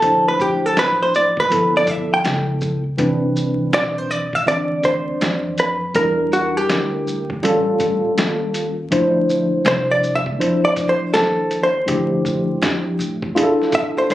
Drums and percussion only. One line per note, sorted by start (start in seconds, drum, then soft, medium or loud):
0.02 kick medium
0.02 closed hi-hat medium
0.40 kick medium
0.40 shaker medium
0.77 snare loud
0.77 closed hi-hat medium
1.14 shaker medium
1.37 kick medium
1.52 closed hi-hat medium
1.76 snare soft
1.87 kick medium
1.87 closed hi-hat soft
1.87 shaker medium
2.25 snare loud
2.25 closed hi-hat medium
2.61 kick medium
2.61 shaker medium
2.98 kick loud
2.98 closed hi-hat medium
3.36 shaker medium
3.73 snare loud
3.73 closed hi-hat medium
4.11 shaker medium
4.33 kick medium
4.48 closed hi-hat loud
4.83 kick medium
4.83 closed hi-hat soft
4.83 shaker soft
5.21 snare loud
5.21 closed hi-hat medium
5.58 closed hi-hat medium
5.58 shaker medium
5.95 kick medium
5.95 closed hi-hat medium
6.33 shaker medium
6.69 snare loud
6.69 closed hi-hat medium
7.07 shaker medium
7.30 kick medium
7.45 closed hi-hat loud
7.80 kick medium
7.80 closed hi-hat soft
7.80 shaker soft
8.18 snare loud
8.18 closed hi-hat medium
8.54 closed hi-hat medium
8.54 shaker medium
8.92 kick medium
8.92 closed hi-hat medium
9.29 shaker medium
9.66 snare loud
9.66 closed hi-hat medium
10.03 shaker medium
10.26 kick medium
10.41 closed hi-hat loud
10.76 kick medium
10.76 closed hi-hat medium
10.76 shaker medium
11.14 snare loud
11.14 closed hi-hat medium
11.51 closed hi-hat medium
11.51 shaker medium
11.88 kick loud
11.88 closed hi-hat loud
12.25 kick medium
12.25 shaker medium
12.62 snare loud
12.62 closed hi-hat medium
13.00 shaker medium
13.22 kick medium
13.37 closed hi-hat loud
13.62 snare soft
13.72 kick medium
13.72 closed hi-hat medium
13.72 shaker medium
14.10 snare medium
14.10 closed hi-hat medium